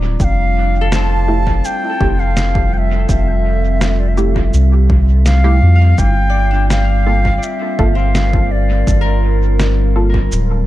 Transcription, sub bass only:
0.00 0.16 D1 medium
0.20 1.61 F1 medium
2.01 3.06 F1 medium
3.09 4.50 F1 medium
4.53 5.61 C2 medium
5.62 5.94 F2 medium
5.98 7.39 G1 medium
7.79 8.84 G1 medium
8.87 10.29 G1 medium
10.32 10.67 D1 medium

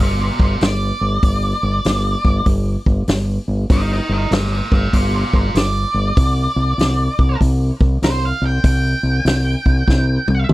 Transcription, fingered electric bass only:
0.00 0.29 G1 medium
0.40 0.56 G1 medium
0.61 0.91 G1 medium
1.01 1.17 G1 medium
1.23 1.52 G1 medium
1.63 1.79 G1 medium
1.85 2.14 G1 medium
2.25 2.41 G1 medium
2.46 2.75 G1 medium
2.87 3.02 G1 medium
3.08 3.37 G1 medium
3.48 3.64 G1 medium
3.70 3.99 G1 medium
4.09 4.25 G1 medium
4.31 4.60 G1 medium
4.72 4.88 G1 medium
4.93 5.23 G1 medium
5.34 5.49 G1 medium
5.54 5.84 G1 medium
5.94 6.10 G1 medium
6.17 6.46 C2 loud
6.56 6.72 C2 loud
6.78 7.07 C2 medium
7.19 7.35 C2 medium
7.41 7.70 C2 loud
7.81 7.97 C2 medium
8.02 8.31 C2 medium
8.42 8.58 C2 medium
8.64 8.93 C2 medium
9.03 9.19 C2 medium
9.25 9.54 C2 loud
9.66 9.82 C2 medium
9.88 10.17 C2 medium
10.28 10.44 C2 medium
10.49 10.54 C2 medium

